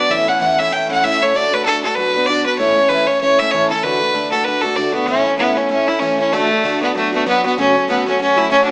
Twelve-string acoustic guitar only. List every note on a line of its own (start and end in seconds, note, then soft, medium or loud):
0.00 0.10 B3 soft
0.00 0.10 D4 soft
0.09 0.28 A2 medium
0.09 0.28 E3 medium
0.09 0.28 A3 medium
0.09 0.28 C#4 medium
0.09 0.26 E4 medium
0.27 0.40 A3 soft
0.27 0.40 C#4 soft
0.27 0.41 E4 soft
0.40 0.58 A2 medium
0.40 0.59 E3 medium
0.40 0.59 A3 medium
0.40 0.59 C#4 medium
0.40 0.57 E4 medium
0.58 0.71 A3 soft
0.58 0.72 C#4 soft
0.58 0.72 E4 soft
0.71 0.90 E3 medium
0.71 0.90 A3 medium
0.71 0.90 C#4 medium
0.71 0.88 E4 medium
0.89 1.03 A3 soft
0.89 1.03 C#4 soft
0.89 1.03 E4 medium
1.03 1.21 A2 medium
1.03 1.21 E3 medium
1.03 1.22 A3 medium
1.03 1.21 C#4 medium
1.03 1.20 E4 medium
1.21 1.33 A3 soft
1.21 1.35 C#4 soft
1.21 1.34 E4 soft
1.34 1.52 D3 medium
1.34 1.52 A3 medium
1.34 1.52 D4 medium
1.34 1.51 F#4 medium
1.52 1.65 A3 soft
1.52 1.66 D4 soft
1.52 1.65 F#4 soft
1.65 1.83 D3 medium
1.65 1.84 A3 medium
1.65 1.84 D4 medium
1.65 1.82 F#4 medium
1.84 1.98 A3 soft
1.84 1.98 D4 soft
1.84 1.97 F#4 medium
1.97 2.15 F#3 medium
1.97 2.15 B3 medium
1.97 2.15 D4 medium
1.97 2.13 F#4 medium
2.15 2.28 B3 soft
2.15 2.28 D4 soft
2.15 2.28 F#4 soft
2.28 2.46 B2 medium
2.28 2.46 F#3 medium
2.28 2.46 B3 medium
2.28 2.45 D4 medium
2.28 2.44 F#4 medium
2.45 2.59 B3 soft
2.45 2.59 D4 soft
2.45 2.59 F#4 soft
2.58 2.76 A2 medium
2.58 2.77 E3 medium
2.58 2.77 A3 medium
2.58 2.76 C#4 medium
2.58 2.75 E4 medium
2.76 2.89 A3 soft
2.76 2.90 C#4 soft
2.76 2.90 E4 soft
2.89 3.08 A2 medium
2.89 3.08 E3 medium
2.89 3.08 A3 medium
2.89 3.07 C#4 medium
2.89 3.06 E4 medium
3.07 3.21 A3 soft
3.07 3.21 C#4 soft
3.07 3.21 E4 soft
3.21 3.39 E3 medium
3.21 3.39 A3 medium
3.21 3.40 C#4 medium
3.21 3.38 E4 medium
3.39 3.53 A3 soft
3.39 3.53 C#4 soft
3.39 3.52 E4 medium
3.53 3.71 A2 medium
3.53 3.71 E3 medium
3.53 3.71 A3 medium
3.53 3.70 C#4 medium
3.53 3.69 E4 medium
3.70 3.83 A3 soft
3.70 3.84 C#4 medium
3.70 3.83 E4 soft
3.83 4.01 D3 medium
3.83 4.02 A3 medium
3.83 4.01 D4 medium
3.83 3.99 F#4 medium
4.02 4.13 A3 soft
4.02 4.14 D4 soft
4.14 4.32 D3 medium
4.14 4.32 A3 medium
4.14 4.32 D4 medium
4.14 4.31 F#4 medium
4.32 4.45 A3 soft
4.32 4.46 D4 soft
4.32 4.45 F#4 soft
4.45 4.63 D3 medium
4.45 4.64 A3 medium
4.45 4.64 D4 medium
4.45 4.62 F#4 medium
4.63 4.76 A3 soft
4.63 4.76 D4 soft
4.63 4.77 F#4 medium
4.76 4.94 D3 medium
4.76 4.95 A3 medium
4.76 4.94 D4 medium
4.76 4.92 F#4 medium
4.94 5.07 A3 soft
4.94 5.08 D4 soft
4.94 5.07 F#4 soft
5.07 5.25 A2 medium
5.07 5.26 E3 medium
5.07 5.26 A3 medium
5.07 5.25 C#4 medium
5.07 5.23 E4 medium
5.24 5.38 A3 soft
5.24 5.38 C#4 soft
5.24 5.38 E4 medium
5.38 5.56 A2 medium
5.38 5.57 E3 medium
5.38 5.57 A3 medium
5.38 5.55 C#4 medium
5.38 5.54 E4 medium
5.55 5.69 A3 soft
5.55 5.70 C#4 soft
5.55 5.69 E4 soft
5.69 5.87 E3 medium
5.69 5.88 A3 medium
5.69 5.87 C#4 medium
5.69 5.86 E4 medium
5.87 6.01 A3 soft
5.87 6.01 C#4 medium
5.87 6.01 E4 medium
6.01 6.19 A2 medium
6.01 6.19 E3 medium
6.01 6.19 A3 medium
6.01 6.19 C#4 medium
6.01 6.17 E4 medium
6.18 6.32 A3 soft
6.18 6.33 C#4 soft
6.18 6.32 E4 soft
6.32 6.50 D3 medium
6.32 6.51 A3 medium
6.32 6.51 D4 medium
6.32 6.49 F#4 medium
6.50 6.63 A3 soft
6.50 6.64 D4 soft
6.50 6.64 F#4 soft
6.64 6.82 D3 medium
6.64 6.82 A3 medium
6.64 6.82 D4 medium
6.64 6.80 F#4 medium
6.81 6.95 A3 soft
6.81 6.96 D4 medium
6.81 6.95 F#4 soft
6.95 7.13 F#3 medium
6.95 7.13 B3 medium
6.95 7.13 D4 medium
6.95 7.11 F#4 medium
7.12 7.25 B3 soft
7.12 7.26 D4 medium
7.12 7.26 F#4 medium
7.25 7.44 B2 medium
7.25 7.44 F#3 medium
7.25 7.44 B3 medium
7.25 7.44 D4 medium
7.25 7.43 F#4 medium
7.44 7.58 B3 soft
7.44 7.58 D4 medium
7.44 7.57 F#4 medium
7.58 7.75 F#2 medium
7.58 7.76 C#3 medium
7.58 7.76 F#3 medium
7.58 7.76 A3 medium
7.58 7.75 C#4 medium
7.58 7.74 F#4 medium
7.75 7.88 F#3 soft
7.75 7.89 A3 soft
7.75 7.89 C#4 soft
7.75 7.88 F#4 soft
7.88 8.06 F#2 medium
7.88 8.07 C#3 medium
7.88 8.07 F#3 medium
7.88 8.07 A3 medium
7.88 8.06 C#4 medium
7.88 8.05 F#4 medium
8.06 8.18 F#3 soft
8.06 8.19 A3 soft
8.06 8.20 C#4 soft
8.06 8.20 F#4 medium
8.19 8.37 F#3 medium
8.19 8.38 A3 medium
8.19 8.36 C#4 medium
8.19 8.35 F#4 medium
8.37 8.50 F#3 soft
8.37 8.50 A3 soft
8.37 8.51 C#4 soft
8.37 8.50 F#4 medium
8.50 8.68 F#2 medium
8.50 8.69 C#3 medium
8.50 8.69 F#3 medium
8.50 8.69 A3 medium
8.50 8.68 C#4 medium
8.50 8.67 F#4 medium
8.68 8.71 F#4 medium